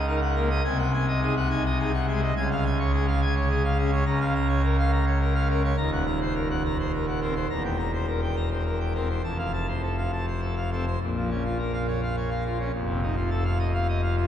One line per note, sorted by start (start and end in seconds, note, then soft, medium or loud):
0.00 0.61 C#2 medium
0.00 0.61 C#3 medium
0.07 0.20 D#4 medium
0.07 0.20 A#4 medium
0.21 0.35 F#5 medium
0.35 0.49 A#3 medium
0.35 0.49 A#4 medium
0.50 0.62 D#5 medium
0.64 2.32 C2 medium
0.64 2.32 C3 medium
0.64 0.77 G#5 loud
0.78 0.91 F#5 medium
0.93 1.06 G#5 medium
1.08 1.20 D#5 medium
1.22 1.35 D#4 medium
1.22 1.35 G#4 medium
1.36 1.49 F#5 medium
1.50 1.63 D#4 medium
1.50 1.63 G#5 medium
1.65 1.78 D#5 medium
1.79 1.92 D#4 medium
1.79 1.92 G#4 medium
1.93 2.06 F#5 medium
2.08 2.21 G#3 medium
2.08 2.20 G#4 medium
2.22 2.34 D#5 medium
2.36 4.03 C#2 medium
2.36 4.03 C#3 medium
2.36 2.49 G#5 loud
2.52 2.64 F5 medium
2.65 2.78 G#5 medium
2.79 2.92 C#5 medium
2.93 3.06 G#4 medium
3.07 3.20 F5 medium
3.21 3.34 G#5 medium
3.36 3.48 C#5 medium
3.50 3.62 G#4 medium
3.64 3.77 F5 medium
3.78 3.91 C#4 medium
3.78 3.91 G#4 medium
3.92 4.04 C#5 medium
4.06 5.73 C#2 medium
4.06 5.73 C#3 medium
4.06 4.19 A#5 loud
4.21 4.33 F5 medium
4.35 4.48 A#5 medium
4.49 4.62 C#5 medium
4.63 4.76 A#4 medium
4.78 4.91 F5 medium
4.92 5.05 A#5 medium
5.06 5.19 C#5 medium
5.21 5.34 A#4 medium
5.35 5.47 F5 medium
5.49 5.62 C#4 medium
5.49 5.62 A#4 medium
5.64 5.76 C#5 medium
5.77 7.46 D#1 medium
5.77 7.46 D#2 medium
5.77 5.90 A#5 loud
5.92 6.05 F#5 medium
6.06 6.19 A#5 medium
6.22 6.34 C5 medium
6.35 6.48 A#4 medium
6.50 6.63 F#5 medium
6.65 6.77 A#5 medium
6.79 6.91 C5 medium
6.93 7.06 A#4 medium
7.07 7.20 F#5 medium
7.21 7.34 C4 medium
7.21 7.34 A#4 medium
7.35 7.48 C5 medium
7.50 9.20 E1 medium
7.50 9.20 E2 medium
7.50 7.63 A#5 medium
7.65 7.77 G5 medium
7.79 7.91 A#5 medium
7.93 8.06 C5 medium
8.07 8.21 A#4 medium
8.22 8.35 G5 medium
8.36 8.49 A#5 medium
8.51 8.64 C5 medium
8.65 8.78 A#4 soft
8.80 8.93 G5 medium
8.95 9.08 C4 soft
8.95 9.08 A#4 soft
9.09 9.22 C5 medium
9.23 10.97 F1 medium
9.23 10.97 F2 medium
9.23 9.37 A5 medium
9.38 9.52 F5 soft
9.52 9.66 A5 soft
9.68 9.82 C5 soft
9.82 9.96 A4 soft
9.97 10.11 F5 medium
10.12 10.26 A5 medium
10.27 10.40 C5 soft
10.41 10.55 A4 soft
10.56 10.70 F5 soft
10.72 10.85 C4 soft
10.72 10.85 A4 soft
10.87 10.99 C5 soft
11.01 12.71 A#1 medium
11.01 12.70 A#2 medium
11.16 11.29 F3 soft
11.30 11.43 C#4 medium
11.45 11.58 F4 medium
11.58 11.72 A#4 medium
11.73 11.86 F5 medium
11.88 12.01 C#5 medium
12.03 12.15 F5 soft
12.17 12.30 C#5 medium
12.30 12.44 F5 soft
12.45 12.58 F4 medium
12.59 12.72 C#4 medium
12.73 14.27 F1 medium
12.73 14.27 F2 medium
12.88 13.01 C3 medium
13.02 13.15 D#4 soft
13.16 13.29 F4 medium
13.30 13.44 A4 medium
13.44 13.58 F5 medium
13.59 13.72 D#5 medium
13.74 13.87 F5 medium
13.88 14.01 D#5 medium
14.02 14.16 F5 medium
14.17 14.27 F4 medium